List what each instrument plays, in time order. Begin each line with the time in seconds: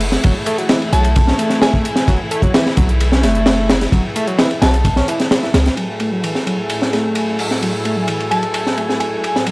Already playing: 808-style bass F#1, string section E3 A3 E4 G#4
0.01 closed hi-hat, open hi-hat
0.12 snare, closed hi-hat
0.24 808-style bass F#1, analog synth lead F#3, kick, closed hi-hat, ride
0.46 analog synth lead A3, closed hi-hat, ride
0.58 analog synth lead F#3, closed hi-hat
0.69 analog synth lead E3, snare, closed hi-hat, ride
0.82 ride
0.93 808-style bass B1, analog synth lead F#3, synth bell A5, closed hi-hat, ride
1.05 closed hi-hat, ride
1.16 kick, closed hi-hat, ride
1.27 analog synth lead C#4, snare
1.39 analog synth lead A3, closed hi-hat, ride
1.50 snare, closed hi-hat
1.62 synth bell G#5, snare, closed hi-hat, ride
1.74 kick
1.85 closed hi-hat, ride
1.96 snare, closed hi-hat
2.08 808-style bass F#1, analog synth lead F#3, kick, closed hi-hat, ride
2.31 analog synth lead A3, closed hi-hat, ride
2.42 analog synth lead F#3, kick, closed hi-hat
2.54 analog synth lead E3, snare, closed hi-hat, ride
2.66 snare
2.77 808-style bass B1, analog synth lead F#3, kick, closed hi-hat, ride
2.89 closed hi-hat
3.00 closed hi-hat, ride
3.12 analog synth lead C#4, snare
3.23 808-style bass F#1, analog synth lead A3, snare, closed hi-hat, ride
3.35 closed hi-hat
3.46 snare, closed hi-hat, ride
3.69 snare, closed hi-hat, ride
3.81 snare, closed hi-hat
3.92 808-style bass F#1, analog synth lead F#3, kick, closed hi-hat, ride
4.16 analog synth lead A3, closed hi-hat, ride
4.27 analog synth lead F#3, closed hi-hat
4.39 analog synth lead E3, snare, closed hi-hat, ride
4.51 ride
4.62 808-style bass B1, analog synth lead F#3, synth bell A5, snare, closed hi-hat, ride
4.74 closed hi-hat, ride
4.85 kick, closed hi-hat, ride
4.96 analog synth lead C#4, snare
5.08 analog synth lead E3, closed hi-hat, ride
5.20 snare, closed hi-hat
5.31 snare, closed hi-hat, ride
5.43 analog synth lead E3, snare
5.54 808-style bass C#2, snare, closed hi-hat, ride
5.66 snare, closed hi-hat
5.77 string section A2 F#3 E4 G#5, analog synth lead F#3, brass ensemble E4 F#4 G#4 A4, ride
6.00 analog synth lead A3, closed hi-hat, ride
6.12 analog synth lead F#3, closed hi-hat
6.23 analog synth lead E3, ride
6.35 snare
6.46 analog synth lead F#3, closed hi-hat, ride
6.58 closed hi-hat
6.70 ride
6.81 analog synth lead C#4, snare
6.93 analog synth lead A3, snare, closed hi-hat, ride
7.04 closed hi-hat
7.15 ride
7.39 closed hi-hat, open hi-hat
7.51 snare, closed hi-hat
7.62 analog synth lead F#3, ride
7.85 analog synth lead A3, closed hi-hat, ride
7.97 analog synth lead F#3, closed hi-hat
8.08 analog synth lead E3, ride
8.20 ride
8.31 analog synth lead F#3, synth bell A5, closed hi-hat, ride
8.43 closed hi-hat, ride
8.54 ride
8.66 analog synth lead C#4, snare
8.77 analog synth lead A3, closed hi-hat, ride
8.89 snare, closed hi-hat
9.00 synth bell G#5, closed hi-hat, ride
9.24 closed hi-hat, ride
9.35 snare, closed hi-hat
9.46 analog synth lead F#3, brass ensemble E4 F#4 G#4 A4, ride